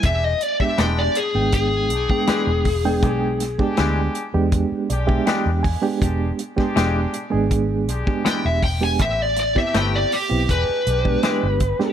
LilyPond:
<<
  \new Staff \with { instrumentName = "Lead electric guitar" } { \time 4/4 \key e \phrygian \tempo 4 = 80 e''16 dis''16 d''16 e''16 g''16 d''16 gis'8 gis'2~ | gis'4 r2. | r2. g''16 e''16 g''16 gis''16 | e''16 d''16 d''16 e''16 g''16 d''16 g'8 b'2 | }
  \new Staff \with { instrumentName = "Horn section" } { \time 4/4 \key e \phrygian <gis d' g'>8 r16 <gis d' g'>8. r4 <gis d' g''>8. r8. | <gis d' g'>8 r16 <gis d' g'>8. r4 <gis d' g'>8. r8. | <gis d' g'>8 r16 <gis d' g'>8. r4 <gis d' g'>8. r8. | <b c' g'>8 r16 <a g'>8. r8 <gis d' g'>8 <gis d' g'>8. r8. | }
  \new Staff \with { instrumentName = "Reed electric piano" } { \time 4/4 \key e \phrygian << { r1 | r2 r8 d''16 e''16 g''8 gis''8 | r1 | r1 | } \\ { r8. <gis b d' g'>8. r16 <gis b d' g''>8. r16 <gis b d' g''>8. r16 <gis b d' g''>16~ | <gis b d' g''>8 r16 <gis b d' g'>8. r16 <gis b d' g'>8. r16 <gis b d' g'>8. r16 <gis b d' g'>16~ | <gis b d' g'>8 r16 <gis b d' g'>8. r16 <gis b d' gis'>8. r16 <gis b d' g'>8. r16 <gis b d' g'>16 | r8. <b c' e' g'>8. r16 <b c' e' g'>16 r8. <gis b d' g'>8. r16 <gis b d' g'>16 | } >> }
  \new Staff \with { instrumentName = "Clean electric guitar" } { \time 4/4 \key e \phrygian r4 <e gis d' g'>8 r4. <e gis d' g'>8 r8 | r4 <e gis d' g'>8 r4. <e gis d' g'>8 r8 | r4 <e gis d' g'>8 r4. <e gis d' g'>8 r8 | r4 <a c' g' b'>8 r4. <e gis d' g'>8 r8 | }
  \new Staff \with { instrumentName = "Fingered electric bass" } { \clef bass \time 4/4 \key e \phrygian e,,8 r8 e,,8 r16 gis,,8. b,,16 r8 e,,8. | b,,4 d,8 r16 e,8 r16 b,,8 r16 e,8 r16 | e,,8 r8 e,,8 r16 gis,,8. b,,16 r8 e,,8. | a,,4 g,,8 r16 b,,16 e,,16 r16 b,,8 r16 g,,8 r16 | }
  \new DrumStaff \with { instrumentName = "Drums" } \drummode { \time 4/4 <hh bd>8 hh16 bd16 <hh sn>8 hh8 <hh bd>8 hh16 bd16 <hh sn>8 <hho bd>8 | <hh bd>8 <hh sn>16 bd16 <hh sn>8 hh8 <hh bd>8 hh16 bd16 <hh sn>8 <hho bd>8 | <hh bd>8 hh16 <bd sn>16 <hh sn>8 hh8 <hh bd>8 hh16 bd16 <hh sn>8 <hho bd>8 | <hh bd>8 <hh sn>16 <bd sn>16 <hh sn>8 hho8 <hh bd>8 hh16 bd16 <hh sn>8 <hh bd>16 sn16 | }
>>